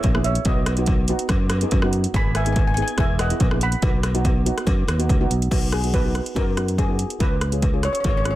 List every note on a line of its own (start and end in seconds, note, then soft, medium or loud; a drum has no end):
0.00 0.37 A#1 medium
0.00 0.23 C#5 medium
0.00 0.23 E5 medium
0.00 kick medium
0.00 closed hi-hat medium
0.00 cowbell medium
0.15 0.34 B3 medium
0.15 0.34 E4 medium
0.15 0.34 G#4 medium
0.15 cross-stick medium
0.24 0.45 C#5 medium
0.24 0.46 E5 medium
0.24 closed hi-hat medium
0.35 closed hi-hat medium
0.45 1.12 B1 loud
0.45 0.65 B3 medium
0.45 0.65 D#4 medium
0.45 0.66 F#4 medium
0.45 0.86 B4 medium
0.45 0.85 D#5 medium
0.45 kick loud
0.45 closed hi-hat medium
0.45 cowbell medium
0.66 cross-stick medium
0.66 closed hi-hat medium
0.66 cowbell medium
0.77 0.97 B3 medium
0.77 0.97 D#4 medium
0.77 0.97 F#4 medium
0.77 closed hi-hat medium
0.86 kick medium
0.86 closed hi-hat medium
0.86 cowbell medium
1.08 1.41 B3 loud
1.08 1.41 D#4 medium
1.08 1.42 F#4 loud
1.08 closed hi-hat medium
1.19 closed hi-hat medium
1.29 1.63 F#2 medium
1.29 kick loud
1.29 cross-stick medium
1.29 closed hi-hat medium
1.29 cowbell medium
1.50 cross-stick medium
1.50 closed hi-hat medium
1.50 cowbell medium
1.61 1.74 B3 medium
1.61 1.75 D#4 medium
1.61 1.75 G#4 medium
1.61 closed hi-hat medium
1.71 2.05 F#2 medium
1.71 kick medium
1.71 closed hi-hat medium
1.71 cowbell medium
1.82 2.02 B3 medium
1.82 2.02 D#4 medium
1.82 2.02 F#4 loud
1.82 cross-stick medium
1.93 closed hi-hat medium
2.04 closed hi-hat medium
2.14 2.81 G#1 loud
2.14 2.33 B3 medium
2.14 2.33 D#4 medium
2.14 2.34 G#4 medium
2.14 2.35 G#5 medium
2.14 2.37 B5 loud
2.14 kick loud
2.14 closed hi-hat medium
2.14 cowbell medium
2.35 2.43 E5 medium
2.35 2.44 G#5 loud
2.35 cross-stick medium
2.35 closed hi-hat medium
2.35 cowbell medium
2.45 2.65 B3 medium
2.45 2.65 D#4 medium
2.45 2.66 G#4 medium
2.45 2.51 G#5 medium
2.45 closed hi-hat medium
2.53 2.58 G#5 medium
2.53 kick medium
2.53 closed hi-hat medium
2.57 2.66 G#5 medium
2.57 cowbell medium
2.68 2.73 G#5 medium
2.74 2.97 B3 medium
2.74 2.99 D#4 medium
2.74 2.98 G#4 medium
2.74 2.81 G#5 medium
2.74 closed hi-hat medium
2.82 2.90 G#5 medium
2.88 closed hi-hat medium
2.98 3.32 E1 loud
2.98 3.24 B3 medium
2.98 3.24 E4 medium
2.98 3.24 G#4 medium
2.98 3.19 E5 medium
2.98 3.21 G#5 loud
2.98 kick loud
2.98 cross-stick medium
2.98 closed hi-hat medium
2.98 cowbell medium
3.19 3.59 D#5 medium
3.19 3.62 F#5 medium
3.19 cross-stick medium
3.19 closed hi-hat medium
3.19 cowbell medium
3.30 3.43 B3 medium
3.30 3.43 E4 medium
3.30 3.43 G#4 medium
3.30 closed hi-hat medium
3.40 3.74 A#1 medium
3.40 kick medium
3.40 closed hi-hat medium
3.40 cowbell medium
3.51 3.71 B3 medium
3.51 3.71 E4 medium
3.51 3.71 G#4 medium
3.51 cross-stick medium
3.61 5.06 F#5 medium
3.61 5.06 B5 loud
3.61 closed hi-hat medium
3.72 closed hi-hat medium
3.82 4.49 B1 loud
3.82 4.02 B3 medium
3.82 4.02 D#4 medium
3.82 4.02 F#4 medium
3.82 kick loud
3.82 closed hi-hat medium
3.82 cowbell medium
4.03 cross-stick medium
4.03 closed hi-hat medium
4.03 cowbell medium
4.15 4.34 B3 medium
4.15 4.34 D#4 medium
4.15 4.34 F#4 loud
4.15 closed hi-hat medium
4.25 kick medium
4.25 closed hi-hat medium
4.25 cowbell medium
4.46 4.78 B3 medium
4.46 4.78 D#4 medium
4.46 4.78 F#4 loud
4.46 closed hi-hat medium
4.58 cross-stick medium
4.58 closed hi-hat medium
4.67 4.84 F#2 loud
4.67 kick loud
4.67 closed hi-hat medium
4.67 cowbell loud
4.87 5.07 D#2 medium
4.87 cross-stick medium
4.87 closed hi-hat medium
4.87 cowbell medium
4.98 5.11 B3 medium
4.98 5.11 D#4 medium
4.98 5.11 F#4 medium
4.98 closed hi-hat medium
5.09 5.28 C#2 medium
5.09 kick medium
5.09 closed hi-hat medium
5.09 cowbell medium
5.21 5.39 B3 medium
5.21 5.39 D#4 medium
5.21 5.40 F#4 loud
5.30 5.49 B1 medium
5.30 closed hi-hat medium
5.42 closed hi-hat medium
5.51 6.18 B1 medium
5.51 5.71 B3 medium
5.51 5.71 D#4 medium
5.51 5.71 F#4 medium
5.51 kick loud
5.51 closed hi-hat medium
5.51 crash loud
5.51 cowbell medium
5.72 5.95 G#4 medium
5.72 cross-stick medium
5.72 closed hi-hat medium
5.84 5.96 B3 medium
5.84 5.96 D#4 medium
5.84 5.96 F#4 medium
5.84 closed hi-hat medium
5.94 6.37 B4 medium
5.94 kick medium
5.94 closed hi-hat medium
5.94 cowbell medium
6.05 6.24 B3 medium
6.05 6.24 D#4 medium
6.05 6.24 F#4 medium
6.15 cross-stick medium
6.15 closed hi-hat medium
6.26 closed hi-hat medium
6.35 7.03 F#2 medium
6.35 6.49 B3 medium
6.35 6.49 D#4 medium
6.35 6.49 F#4 medium
6.35 6.80 A#4 medium
6.35 kick loud
6.35 closed hi-hat medium
6.35 cowbell medium
6.57 6.76 B3 medium
6.57 6.76 D#4 medium
6.57 6.76 F#4 medium
6.57 cross-stick medium
6.57 closed hi-hat medium
6.68 closed hi-hat medium
6.78 6.98 G#4 medium
6.78 kick medium
6.78 closed hi-hat medium
6.78 cowbell medium
6.88 7.07 B3 medium
6.88 7.08 D#4 medium
6.88 7.08 F#4 medium
6.99 closed hi-hat medium
7.10 closed hi-hat medium
7.19 7.87 C#2 medium
7.19 7.39 C#4 medium
7.19 7.39 F4 medium
7.19 7.39 G#4 medium
7.19 7.86 B4 medium
7.19 kick loud
7.19 closed hi-hat medium
7.19 cowbell medium
7.41 cross-stick medium
7.41 closed hi-hat medium
7.52 7.64 C#4 medium
7.52 7.65 F4 medium
7.52 7.65 G#4 medium
7.52 closed hi-hat medium
7.62 kick medium
7.62 closed hi-hat medium
7.62 cowbell medium
7.73 7.92 C#4 medium
7.73 7.92 F4 medium
7.73 7.92 G#4 medium
7.83 7.92 C#5 medium
7.83 cross-stick medium
7.83 closed hi-hat medium
7.93 7.99 C#5 medium
7.93 closed hi-hat medium
8.00 8.06 C#5 medium
8.00 closed hi-hat medium
8.05 8.36 G#1 loud
8.05 8.18 C#4 medium
8.05 8.18 F4 medium
8.05 8.18 G#4 medium
8.05 kick loud
8.05 cowbell medium
8.09 8.15 C#5 medium
8.17 8.23 C#5 medium
8.24 8.36 C#4 medium
8.24 8.36 F4 medium
8.24 8.36 G#4 medium
8.24 8.29 C#5 medium
8.24 cross-stick medium
8.24 closed hi-hat medium
8.31 8.36 C#5 medium